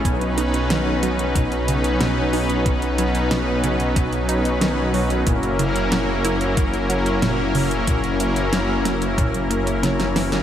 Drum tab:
HH |xxxxx-xxxxxxx-ox|xxxxx-xxxxxxx-ox|xxxxx-xxxxxxx-ox|xxxxx-xxxxxxxxox|
SD |----o-------o---|----o-------o---|----o-------o---|----o-o-----oooo|
BD |o-------o-------|o-------o-------|o-------o-------|o-------o-------|